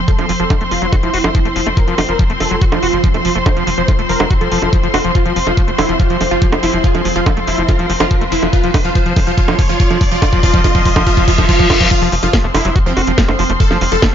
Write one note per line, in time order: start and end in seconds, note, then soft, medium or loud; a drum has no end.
0.00 11.90 F3 medium
0.00 11.90 C4 medium
0.00 11.91 C5 medium
0.00 11.91 C6 medium
0.00 riser medium
0.08 0.11 F3 medium
0.08 0.28 A4 loud
0.08 kick loud
0.08 closed hi-hat medium
0.19 0.26 F1 medium
0.19 0.26 F3 loud
0.19 closed hi-hat soft
0.19 high bongo soft
0.29 0.37 F1 loud
0.29 0.32 F3 loud
0.29 open hi-hat loud
0.40 0.47 F1 medium
0.40 0.45 F3 medium
0.40 0.59 A4 loud
0.50 0.55 F3 medium
0.50 kick loud
0.50 closed hi-hat medium
0.50 high bongo medium
0.61 0.68 F1 medium
0.61 0.64 A3 medium
0.61 closed hi-hat soft
0.71 0.79 F1 loud
0.71 0.74 F3 medium
0.71 0.91 F4 medium
0.71 open hi-hat loud
0.82 0.89 F1 medium
0.82 0.87 F#3 medium
0.92 0.95 F#4 loud
0.92 kick loud
0.92 closed hi-hat medium
0.92 high bongo soft
1.03 1.11 F1 medium
1.03 1.10 F3 medium
1.03 1.69 E4 loud
1.03 closed hi-hat soft
1.14 1.21 F1 loud
1.14 1.18 F#4 medium
1.14 open hi-hat loud
1.24 1.32 F#1 medium
1.24 1.29 F3 medium
1.24 closed hi-hat soft
1.24 high bongo medium
1.35 1.40 F3 medium
1.35 kick loud
1.35 closed hi-hat medium
1.45 1.53 F1 medium
1.45 1.48 A3 medium
1.45 closed hi-hat soft
1.56 1.63 F1 loud
1.56 1.61 F3 medium
1.56 open hi-hat loud
1.66 1.74 F1 medium
1.66 1.69 A3 medium
1.66 closed hi-hat soft
1.66 high bongo soft
1.77 1.80 F3 medium
1.77 1.97 A#4 loud
1.77 kick loud
1.77 closed hi-hat medium
1.88 1.95 F1 medium
1.88 1.95 F3 loud
1.88 closed hi-hat soft
1.98 2.06 F1 loud
1.98 2.01 F3 loud
1.98 open hi-hat loud
1.98 high bongo medium
2.09 2.16 F1 loud
2.09 2.14 F3 medium
2.09 2.28 A#4 medium
2.09 closed hi-hat soft
2.19 2.24 F3 medium
2.19 kick loud
2.19 closed hi-hat medium
2.30 2.37 F1 medium
2.30 2.33 A3 medium
2.30 closed hi-hat soft
2.40 2.48 F1 loud
2.40 2.43 F3 medium
2.40 2.60 A4 medium
2.40 open hi-hat loud
2.40 high bongo soft
2.51 2.58 F1 loud
2.51 2.56 F#3 medium
2.62 2.64 F#4 loud
2.62 kick loud
2.62 closed hi-hat medium
2.72 2.80 F1 medium
2.72 2.79 F3 medium
2.72 3.38 F4 loud
2.72 closed hi-hat soft
2.72 high bongo medium
2.83 2.90 F1 loud
2.83 2.88 F#4 medium
2.83 open hi-hat loud
2.93 3.01 F#1 medium
2.93 2.98 F3 medium
3.04 3.09 F3 medium
3.04 kick loud
3.04 closed hi-hat medium
3.14 3.22 F1 medium
3.14 3.17 A3 medium
3.14 closed hi-hat soft
3.14 high bongo soft
3.25 3.32 F1 loud
3.25 3.30 F3 medium
3.25 open hi-hat loud
3.35 3.43 F1 medium
3.35 3.38 A3 medium
3.35 closed hi-hat soft
3.46 3.49 F3 medium
3.46 3.66 C5 loud
3.46 kick loud
3.46 closed hi-hat medium
3.46 high bongo medium
3.57 3.64 F1 medium
3.57 3.64 F3 loud
3.57 closed hi-hat soft
3.67 3.75 F1 loud
3.67 3.70 F3 loud
3.67 open hi-hat loud
3.78 3.85 F1 medium
3.78 3.83 F3 medium
3.78 3.97 C5 loud
3.78 closed hi-hat soft
3.88 3.93 F3 medium
3.88 kick loud
3.88 closed hi-hat medium
3.88 high bongo soft
3.99 4.06 F1 medium
3.99 4.02 A3 medium
3.99 closed hi-hat soft
4.09 4.17 F1 loud
4.09 4.12 F3 medium
4.09 4.29 A#4 medium
4.09 open hi-hat loud
4.20 4.27 F1 medium
4.20 4.25 F#3 medium
4.20 closed hi-hat soft
4.20 high bongo medium
4.31 4.33 F#4 loud
4.31 kick loud
4.31 closed hi-hat medium
4.41 4.49 F1 medium
4.41 4.48 F3 medium
4.41 5.07 A4 medium
4.41 closed hi-hat soft
4.52 4.59 F1 loud
4.52 4.59 F3 loud
4.52 open hi-hat loud
4.62 4.70 F1 loud
4.62 4.70 F3 medium
4.62 closed hi-hat soft
4.62 high bongo soft
4.73 4.78 F3 medium
4.73 kick loud
4.73 closed hi-hat medium
4.83 4.91 F#1 medium
4.83 4.88 F3 loud
4.83 closed hi-hat soft
4.94 5.01 F1 loud
4.94 4.99 F#4 medium
4.94 open hi-hat loud
4.94 high bongo medium
5.04 5.12 F1 medium
5.04 5.12 F3 loud
5.15 5.18 F3 medium
5.15 5.35 F4 medium
5.15 kick loud
5.15 closed hi-hat medium
5.26 5.33 F1 medium
5.26 5.33 F3 medium
5.26 closed hi-hat soft
5.36 5.44 F1 loud
5.36 5.39 F3 medium
5.36 open hi-hat loud
5.47 5.54 F1 medium
5.47 5.52 F3 medium
5.47 5.66 F4 medium
5.47 high bongo soft
5.57 5.62 F3 medium
5.57 kick loud
5.57 closed hi-hat medium
5.68 5.75 F1 medium
5.68 5.71 A3 medium
5.68 closed hi-hat soft
5.78 5.86 F1 loud
5.78 5.81 F3 medium
5.78 5.98 E4 medium
5.78 open hi-hat loud
5.78 high bongo medium
5.89 5.96 F1 medium
5.89 5.94 F3 medium
5.89 closed hi-hat soft
6.00 6.02 F3 medium
6.00 6.19 F4 medium
6.00 kick loud
6.00 closed hi-hat medium
6.10 6.18 F1 medium
6.10 6.17 F3 loud
6.10 closed hi-hat soft
6.21 6.28 F1 loud
6.21 6.24 F3 loud
6.21 open hi-hat loud
6.21 high bongo soft
6.31 6.39 F#1 medium
6.31 6.36 F3 medium
6.31 6.51 F4 medium
6.42 6.47 F3 medium
6.42 kick loud
6.42 closed hi-hat medium
6.52 6.60 F1 medium
6.52 6.55 A3 medium
6.52 closed hi-hat soft
6.52 high bongo medium
6.63 6.70 F1 loud
6.63 6.66 F3 medium
6.63 6.82 E4 medium
6.63 open hi-hat loud
6.74 6.81 F1 medium
6.74 6.78 F3 medium
6.74 closed hi-hat soft
6.84 6.87 F3 medium
6.84 7.04 F4 loud
6.84 kick loud
6.84 closed hi-hat medium
6.95 7.02 F1 medium
6.95 7.02 F3 loud
6.95 closed hi-hat soft
6.95 high bongo soft
7.05 7.13 F1 loud
7.05 7.08 F3 loud
7.05 open hi-hat loud
7.16 7.23 F1 medium
7.16 7.21 F3 medium
7.16 7.35 F4 medium
7.16 closed hi-hat soft
7.26 7.31 F3 medium
7.26 kick loud
7.26 closed hi-hat medium
7.26 high bongo medium
7.37 7.44 F1 medium
7.37 7.40 A3 medium
7.37 closed hi-hat soft
7.47 7.55 F1 loud
7.47 7.50 F3 medium
7.47 7.67 E4 medium
7.47 open hi-hat loud
7.58 7.65 F1 loud
7.58 7.63 F3 medium
7.58 closed hi-hat soft
7.69 7.71 F3 medium
7.69 7.88 F4 loud
7.69 kick loud
7.69 closed hi-hat medium
7.69 high bongo soft
7.79 7.87 F1 medium
7.79 7.86 F3 loud
7.79 closed hi-hat soft
7.90 7.97 F1 loud
7.90 7.93 F3 loud
7.90 open hi-hat loud
8.00 8.08 F#1 medium
8.00 8.05 F3 medium
8.00 8.20 F4 medium
8.00 closed hi-hat soft
8.00 high bongo medium
8.11 8.16 F3 medium
8.11 kick loud
8.11 closed hi-hat medium
8.21 8.29 F1 medium
8.21 8.24 A3 medium
8.21 closed hi-hat soft
8.32 8.39 F1 loud
8.32 8.35 F3 medium
8.32 8.51 E4 medium
8.32 open hi-hat loud
8.43 8.50 F1 medium
8.43 8.47 F3 medium
8.43 closed hi-hat soft
8.43 high bongo soft
8.53 8.56 F3 medium
8.53 8.73 F4 loud
8.53 kick loud
8.53 closed hi-hat medium
8.64 8.71 F1 medium
8.64 8.71 F3 loud
8.64 closed hi-hat soft
8.74 8.82 F1 loud
8.74 8.77 F3 loud
8.74 kick loud
8.74 open hi-hat loud
8.74 high bongo medium
8.85 8.92 F1 medium
8.85 8.90 F3 medium
8.85 8.94 F4 medium
8.85 closed hi-hat soft
8.95 8.98 F3 medium
8.95 9.15 F4 medium
8.95 kick loud
8.95 closed hi-hat medium
9.06 9.13 F1 medium
9.06 9.13 F3 loud
9.06 closed hi-hat soft
9.16 9.24 F1 loud
9.16 9.19 F3 loud
9.16 kick loud
9.16 open hi-hat loud
9.16 high bongo soft
9.27 9.34 F1 loud
9.27 9.32 F3 medium
9.27 9.36 F4 loud
9.27 closed hi-hat soft
9.38 9.41 F3 medium
9.38 9.57 F4 loud
9.38 kick loud
9.38 closed hi-hat medium
9.48 9.56 F1 medium
9.48 9.55 F3 loud
9.48 closed hi-hat soft
9.48 high bongo medium
9.59 9.66 F1 loud
9.59 9.62 F3 loud
9.59 kick loud
9.59 open hi-hat loud
9.69 9.77 F#1 medium
9.69 9.74 F3 medium
9.69 9.78 F4 medium
9.69 closed hi-hat soft
9.80 9.83 F3 medium
9.80 9.99 F4 loud
9.80 kick loud
9.80 closed hi-hat medium
9.90 9.98 F1 medium
9.90 9.98 F3 loud
9.90 closed hi-hat soft
9.90 high bongo soft
10.01 10.08 F1 loud
10.01 10.04 F3 loud
10.01 kick loud
10.01 open hi-hat loud
10.12 10.19 F1 medium
10.12 10.16 F3 medium
10.12 10.20 F4 loud
10.12 closed hi-hat soft
10.22 10.25 F3 medium
10.22 10.42 F4 loud
10.22 kick loud
10.22 closed hi-hat medium
10.22 high bongo medium
10.33 10.40 F1 medium
10.33 10.40 F3 loud
10.33 kick medium
10.33 closed hi-hat soft
10.43 10.51 F1 loud
10.43 10.46 F3 medium
10.43 10.63 F4 loud
10.43 kick loud
10.43 open hi-hat loud
10.54 10.61 F1 medium
10.54 10.61 F3 loud
10.54 kick loud
10.54 closed hi-hat soft
10.64 10.67 F3 medium
10.64 10.84 F4 loud
10.64 kick loud
10.64 closed hi-hat medium
10.64 high bongo soft
10.75 10.82 F1 medium
10.75 10.82 F3 loud
10.75 kick medium
10.75 closed hi-hat soft
10.85 10.93 F1 loud
10.85 10.88 F3 medium
10.85 11.05 F4 loud
10.85 kick loud
10.85 open hi-hat loud
10.96 11.04 F1 medium
10.96 11.03 F3 loud
10.96 kick medium
10.96 closed hi-hat soft
10.96 high bongo medium
11.07 11.10 F3 medium
11.07 11.26 F4 loud
11.07 kick loud
11.07 closed hi-hat medium
11.07 reverse cymbal medium
11.17 11.25 F1 medium
11.17 11.24 F3 loud
11.17 kick loud
11.17 closed hi-hat soft
11.28 11.35 F1 loud
11.28 11.31 F3 medium
11.28 11.47 F4 loud
11.28 kick loud
11.28 open hi-hat loud
11.38 11.46 F1 loud
11.38 11.46 F3 loud
11.38 kick loud
11.38 closed hi-hat soft
11.38 high bongo soft
11.49 11.52 F3 medium
11.49 11.68 F4 loud
11.49 kick loud
11.49 closed hi-hat medium
11.59 11.67 F#1 medium
11.59 11.67 F3 loud
11.59 kick medium
11.59 closed hi-hat soft
11.70 11.77 F1 loud
11.70 11.73 F3 medium
11.70 11.89 F4 loud
11.70 kick loud
11.70 open hi-hat loud
11.70 high bongo medium
11.81 11.88 F1 medium
11.81 11.88 F3 loud
11.81 kick medium
11.81 closed hi-hat soft
11.91 11.94 F3 medium
11.91 14.15 F3 medium
11.91 14.15 C4 medium
11.91 12.11 F4 loud
11.91 kick loud
11.91 closed hi-hat medium
11.91 crash loud
11.96 14.15 C5 medium
12.02 12.09 F1 medium
12.02 12.09 F3 loud
12.02 open hi-hat medium
12.12 12.20 F1 loud
12.12 12.15 F3 loud
12.12 open hi-hat loud
12.23 12.30 F1 medium
12.23 12.28 F3 medium
12.23 12.42 F4 medium
12.23 closed hi-hat medium
12.23 high bongo soft
12.33 12.38 F3 medium
12.33 kick loud
12.33 snare loud
12.33 closed hi-hat medium
12.41 12.51 F1 medium
12.41 12.47 A3 medium
12.41 14.15 C6 medium
12.54 12.62 F1 loud
12.54 12.57 F3 medium
12.54 12.74 E4 loud
12.54 open hi-hat loud
12.54 high bongo medium
12.65 12.73 F1 medium
12.65 12.70 F#3 medium
12.65 closed hi-hat medium
12.76 12.79 F#4 loud
12.76 kick loud
12.76 closed hi-hat medium
12.86 12.94 F1 medium
12.86 12.93 F3 medium
12.86 13.52 C4 loud
12.97 13.04 F1 loud
12.97 13.02 F#4 medium
12.97 open hi-hat loud
12.97 high bongo soft
13.07 13.15 F1 medium
13.07 13.12 F3 medium
13.07 closed hi-hat medium
13.18 13.23 F3 medium
13.18 kick loud
13.18 snare loud
13.18 closed hi-hat medium
13.28 13.36 F#1 medium
13.28 13.31 A3 medium
13.28 high bongo medium
13.39 13.46 F1 loud
13.39 13.44 F3 medium
13.39 open hi-hat loud
13.50 13.57 F1 medium
13.50 13.52 A3 medium
13.50 closed hi-hat medium
13.60 13.63 F3 medium
13.60 13.80 A4 loud
13.60 kick loud
13.60 closed hi-hat medium
13.71 13.78 F1 medium
13.71 13.78 F3 loud
13.71 snare soft
13.71 high bongo soft
13.81 13.89 F1 loud
13.81 13.84 F3 loud
13.81 open hi-hat loud
13.92 13.99 F1 medium
13.92 13.97 F3 medium
13.92 14.11 A4 medium
13.92 closed hi-hat medium
14.02 14.07 F3 medium
14.02 kick loud
14.02 snare loud
14.02 closed hi-hat medium
14.02 high bongo medium